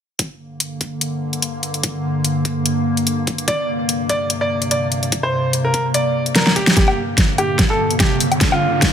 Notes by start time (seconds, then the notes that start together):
0.19 G2 D3 A#3, kick, closed hi-hat
0.60 closed hi-hat
0.81 kick, closed hi-hat
1.01 closed hi-hat
1.33 closed hi-hat
1.42 closed hi-hat
1.63 closed hi-hat
1.74 closed hi-hat
1.83 kick, closed hi-hat
2.24 closed hi-hat
2.45 kick, closed hi-hat
2.66 closed hi-hat
2.97 closed hi-hat
3.07 closed hi-hat
3.27 kick, closed hi-hat
3.38 closed hi-hat
3.48 C3 D5, kick, closed hi-hat
3.89 closed hi-hat
4.09 D5, kick, closed hi-hat
4.30 closed hi-hat
4.41 D5
4.62 closed hi-hat
4.71 D5, closed hi-hat
4.92 closed hi-hat
5.03 closed hi-hat
5.12 kick, closed hi-hat
5.23 C5
5.53 closed hi-hat
5.65 A#4
5.74 kick, closed hi-hat
5.94 D5, closed hi-hat
6.26 closed hi-hat
6.35 A#4, snare, closed hi-hat
6.47 snare
6.56 G4, kick, closed hi-hat
6.67 snare, closed hi-hat
6.76 G2 D3 A#3 G4, kick, snare, closed hi-hat, riser
6.88 low woodblock
7.18 kick, snare, closed hi-hat
7.38 G4, closed hi-hat, low woodblock
7.59 kick, snare, closed hi-hat
7.70 A4
7.91 closed hi-hat
8.00 G4, kick, snare, closed hi-hat
8.20 open hi-hat
8.32 closed hi-hat, low woodblock
8.41 kick, snare, closed hi-hat
8.52 F4, low woodblock
8.82 kick, snare, closed hi-hat